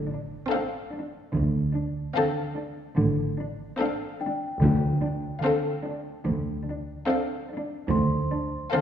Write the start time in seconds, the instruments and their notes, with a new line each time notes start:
Already playing: double bass section A1, cello section A2, celesta A#6, impact
0.11 cello section D4
0.51 viola section C4, cello section D4, violin section A4 F5
0.93 cello section D4
1.34 cello section D2 D3, double bass section D2
1.75 cello section D4
2.15 cello section D3, viola section C4, violin section A4 F5
2.56 cello section D4
2.98 double bass section A1, cello section A2 D3
3.39 cello section D4
3.79 viola section C4, cello section D4, violin section A4 F5
4.21 cello section D4, celesta G5
4.61 double bass section D2, cello section D2 D3, timpani D3
5.03 cello section D4
5.44 cello section D3, viola section C4, violin section A4 F5
5.85 cello section D4
6.26 double bass section D2, cello section D2 D3
6.68 cello section D4
7.08 viola section C4, cello section D4, violin section A4 F5
7.51 cello section D4
7.90 double bass section D2, cello section D2 D3, celesta C5 C6
8.33 cello section D4
8.73 cello section D3, viola section C4, violin section A4 F5